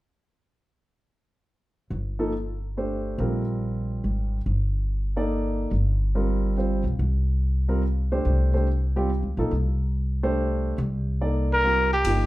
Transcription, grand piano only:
2.19 F3 A#3 D#4 A4
2.77 A3 D4 G4 C5
3.19 G3 C4 F4 A#4
5.16 A#3 D#4 A4 D5
6.15 G3 C4 F4 A#4
6.57 G3 C4 F4 C5
7.68 G3 C4 F4 A#4
8.12 A3 D4 G4 C5
8.54 A3 D4 G4 C5
8.96 G3 C4 F4 G4
9.38 F3 A#3 D#4 A4
10.23 A3 D4 G4 C5
11.21 A#3 D#4 A4 D5
11.64 G3 C4 F4 G4
12.07 F3 A#3 D#4 G4

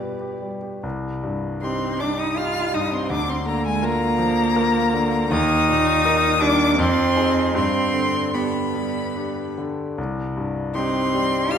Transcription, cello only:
Already playing: B2
1.63 C4
1.99 D4
2.18 D#4
2.37 F4
2.74 D#4
2.92 C4
3.10 D4
3.29 C4
3.47 A#3
3.65 G#3
3.83 A#3
5.31 D#4
6.40 D4
6.78 C4
7.54 C4
8.34 B3
10.75 C4
11.50 F4

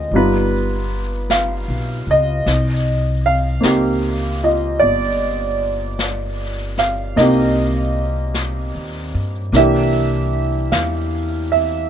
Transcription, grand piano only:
Already playing: D3 G#3 C4 F4 D#5
0.14 G3 B3 D#4 F4 B4
1.31 F5
2.11 D#5
3.26 F5
3.61 A#3 C4 D#4
3.65 G4
4.43 F4 D#5
4.79 D5
6.79 F5
7.16 A#3 C4 D#4 D#5
7.21 G4
9.53 E3 A#3 D4 E5
9.58 G4
10.72 F5
11.52 E5

